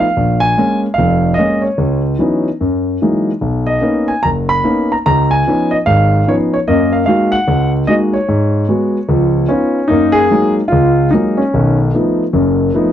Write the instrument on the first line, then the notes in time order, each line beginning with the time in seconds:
grand piano
0.00 F5
0.17 A#1
0.40 G#5
0.57 G#3 A#3 C#4
0.94 F5
0.98 F1 F2
1.34 G#3 D#5
1.38 A#3 C#4
1.62 C#5
1.78 C#2
2.19 E3 F#3 B3 C#4 D#4
2.61 F#2
3.02 E3 F#3 G#3 A#3 D#4
3.41 B1
3.67 D#5
3.81 A#3 B3 C#4 D#4
4.08 G#5
4.23 F#1 A#5
4.49 B5
4.64 A#3 B3 C#4 D#4
4.92 A#5
5.06 C#2 A#5
5.31 G#5
5.47 F3 B3 C#4 D#4
5.71 D#5
5.86 G#1 G#2 F5
6.27 F3 B3 C#4 D#4 C#5
6.54 C#5
6.68 F#2 A#3 D#5
6.93 F5
7.06 G#3 A#3 D#4 F#4 F5
7.32 F#5
7.48 C#2
7.87 G#3 A#3 D#4 F#4 D#5
8.13 C#5
8.29 G#2
8.68 G#3 B3 F#4
9.09 C#2 F3
9.49 B3 C#4 D#4 F4
9.88 F#2 A#3 D#4
10.12 G#4
10.31 F#3 G#3 A#3 D#4
10.68 F4
10.72 C#2
11.11 F#3 G#3 A#3 D#4
11.15 D#4
11.37 C#4
11.54 B1 D#3
11.94 F3 A3 B3 D#4
12.33 F#1 F#2
12.74 F3 A3 B3 D#4